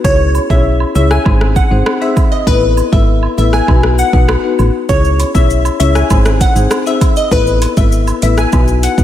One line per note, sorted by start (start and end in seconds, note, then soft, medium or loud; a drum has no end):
0.04 0.39 C#2 loud
0.04 0.19 C#4 medium
0.04 0.19 E4 medium
0.04 0.19 G#4 medium
0.04 0.16 C#5 loud
0.04 0.19 C#5 loud
0.04 kick loud
0.35 cabasa medium
0.35 high woodblock medium
0.50 0.85 B1 medium
0.50 0.64 C#4 medium
0.50 0.64 E4 medium
0.50 0.64 G#4 medium
0.50 0.64 C#5 medium
0.50 0.62 E5 medium
0.50 kick medium
0.80 high woodblock medium
0.95 1.19 C#2 loud
0.95 1.09 C#4 medium
0.95 1.10 E4 medium
0.95 1.10 G#4 medium
0.95 1.10 C#5 medium
0.95 1.07 E5 medium
0.95 cabasa medium
1.11 1.22 G#5 medium
1.11 cross-stick medium
1.26 1.61 G#1 loud
1.26 1.67 C4 loud
1.26 1.68 D#4 medium
1.26 1.68 G#4 medium
1.26 1.68 C5 loud
1.26 kick loud
1.26 high woodblock medium
1.41 cross-stick medium
1.56 1.68 F#5 medium
1.56 kick medium
1.56 cabasa medium
1.71 1.83 G#1 medium
1.71 1.85 C4 medium
1.71 1.85 D#4 medium
1.71 1.85 G#4 medium
1.71 1.85 C5 medium
1.86 cross-stick loud
1.86 high woodblock medium
2.01 2.15 C4 medium
2.01 2.15 D#4 medium
2.01 2.16 G#4 medium
2.01 2.16 C5 medium
2.01 2.13 E5 medium
2.17 kick medium
2.17 cabasa medium
2.17 high woodblock medium
2.32 2.43 D#5 medium
2.47 2.82 A1 loud
2.47 2.61 B3 medium
2.47 2.61 E4 medium
2.47 2.61 A4 medium
2.47 2.59 B4 loud
2.47 2.61 B4 loud
2.47 kick loud
2.77 cabasa medium
2.77 high woodblock medium
2.92 3.27 G#1 loud
2.92 3.06 B3 medium
2.92 3.06 E4 medium
2.92 3.07 A4 medium
2.92 3.07 B4 medium
2.92 3.04 E5 medium
2.92 kick medium
3.23 high woodblock medium
3.38 3.61 A1 medium
3.38 3.52 B3 medium
3.38 3.52 E4 medium
3.38 3.52 A4 medium
3.38 3.52 B4 medium
3.38 3.50 E5 medium
3.38 cabasa medium
3.53 3.65 G#5 medium
3.53 cross-stick medium
3.68 4.03 B1 loud
3.68 4.10 B3 medium
3.68 4.10 D#4 medium
3.68 4.10 F#4 medium
3.68 4.10 B4 loud
3.68 kick medium
3.68 high woodblock medium
3.83 cross-stick medium
3.98 4.10 F#5 medium
3.98 cabasa medium
4.13 4.37 B1 medium
4.13 4.28 B3 medium
4.13 4.28 D#4 medium
4.13 4.28 F#4 medium
4.13 4.28 B4 medium
4.13 kick medium
4.28 cross-stick loud
4.28 high woodblock medium
4.43 4.58 B3 medium
4.43 4.58 D#4 medium
4.43 4.58 F#4 medium
4.43 4.58 B4 medium
4.59 4.71 A1 loud
4.59 cabasa medium
4.59 high woodblock medium
4.89 5.24 C#2 loud
4.89 5.03 C#4 medium
4.89 5.03 E4 medium
4.89 5.04 G#4 medium
4.89 5.01 C#5 medium
4.89 5.04 C#5 loud
4.89 kick loud
4.89 shaker medium
5.05 shaker medium
5.20 closed hi-hat medium
5.20 cabasa medium
5.20 high woodblock medium
5.20 shaker medium
5.35 5.70 B1 medium
5.35 5.49 C#4 medium
5.35 5.49 E4 medium
5.35 5.49 G#4 medium
5.35 5.49 C#5 medium
5.35 5.46 E5 medium
5.35 kick medium
5.35 shaker medium
5.50 shaker medium
5.65 high woodblock medium
5.65 shaker medium
5.80 6.03 C#2 loud
5.80 5.94 C#4 medium
5.80 5.94 E4 medium
5.80 5.95 G#4 medium
5.80 5.95 C#5 medium
5.80 5.91 E5 medium
5.80 closed hi-hat medium
5.80 cabasa medium
5.80 shaker medium
5.95 6.07 G#5 medium
5.95 cross-stick medium
5.95 shaker medium
6.10 6.45 G#1 loud
6.10 6.52 C4 medium
6.10 6.52 D#4 medium
6.10 6.52 G#4 medium
6.10 6.53 C5 loud
6.10 kick medium
6.10 high woodblock medium
6.10 shaker medium
6.25 cross-stick loud
6.25 shaker medium
6.41 6.53 F#5 medium
6.41 kick medium
6.41 closed hi-hat medium
6.41 cabasa medium
6.41 shaker medium
6.56 6.67 G#1 medium
6.56 6.70 C4 medium
6.56 6.70 D#4 medium
6.56 6.70 G#4 medium
6.56 6.70 C5 medium
6.56 shaker medium
6.71 cross-stick loud
6.71 high woodblock medium
6.71 shaker medium
6.86 7.00 C4 medium
6.86 7.00 D#4 medium
6.86 7.01 G#4 medium
6.86 7.01 C5 medium
6.86 6.98 E5 medium
6.86 shaker medium
7.01 kick medium
7.01 closed hi-hat medium
7.01 cabasa medium
7.01 high woodblock medium
7.01 shaker medium
7.16 7.28 D#5 medium
7.16 shaker medium
7.31 7.66 A1 loud
7.31 7.46 B3 medium
7.31 7.46 E4 medium
7.31 7.46 A4 medium
7.31 7.46 B4 loud
7.31 7.44 B4 loud
7.31 kick loud
7.31 shaker medium
7.47 shaker medium
7.62 closed hi-hat medium
7.62 cabasa medium
7.62 high woodblock medium
7.62 shaker medium
7.77 8.12 G#1 loud
7.77 7.91 B3 medium
7.77 7.91 E4 medium
7.77 7.91 A4 medium
7.77 7.92 B4 medium
7.77 7.89 E5 medium
7.77 kick medium
7.77 shaker medium
7.92 shaker medium
8.07 high woodblock medium
8.07 shaker medium
8.22 8.46 A1 medium
8.22 8.37 B3 medium
8.22 8.37 E4 medium
8.22 8.37 A4 medium
8.22 8.37 B4 medium
8.22 8.34 E5 medium
8.22 closed hi-hat medium
8.22 cabasa medium
8.22 shaker medium
8.38 8.50 G#5 medium
8.38 cross-stick medium
8.38 shaker medium
8.52 8.88 B1 loud
8.52 8.94 B3 loud
8.52 8.95 D#4 medium
8.52 8.95 F#4 medium
8.52 8.95 B4 loud
8.52 kick loud
8.52 high woodblock medium
8.52 shaker medium
8.68 shaker medium
8.83 8.95 F#5 medium
8.83 closed hi-hat medium
8.83 cabasa medium
8.83 shaker medium
8.98 9.04 B1 medium
8.98 9.04 B3 medium
8.98 9.04 D#4 medium
8.98 9.04 F#4 medium
8.98 9.04 B4 medium
8.98 kick medium
8.98 shaker medium